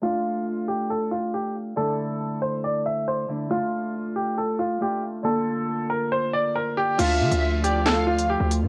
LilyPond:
<<
  \new Staff \with { instrumentName = "Violin section" } { \time 4/4 \key d \minor \tempo 4 = 138 r1 | r1 | r1 | r1 |
e''4. d''8 f''4 r4 | }
  \new Staff \with { instrumentName = "Grand piano" } { \time 4/4 \key d \minor f'4. g'8 a'8 f'8 g'8 r8 | a'4. c''8 d''8 e''8 c''8 r8 | f'4. g'8 a'8 f'8 g'8 r8 | a'4. bes'8 c''8 d''8 bes'8 g'8 |
f'4. g'8 a'8 f'8 g'8 r8 | }
  \new Staff \with { instrumentName = "Harp" } { \time 4/4 \key d \minor <a d' f'>1 | <d a d' e'>2.~ <d a d' e'>8 <d a d' e'>8 | <a d' f'>2. <a d' f'>4 | <d bes d' f'>1 |
<a d' f'>1 | }
  \new Staff \with { instrumentName = "Analog synth pad" } { \clef bass \time 4/4 \key d \minor r1 | r1 | r1 | r1 |
<d f a f'>1 | }
  \new Staff \with { instrumentName = "808-style bass" } { \clef bass \time 4/4 \key d \minor r1 | r1 | r1 | r1 |
d,8 d16 d,2~ d,8 d,8 a,16 | }
  \new DrumStaff \with { instrumentName = "Drums" } \drummode { \time 4/4 r4 r4 r4 r4 | r4 r4 r4 r4 | r4 r4 r4 r4 | r4 r4 r4 r4 |
<cymc hh>8. hh16 r8 hh8 <hc hh sn>8. hh16 r8 hh8 | }
>>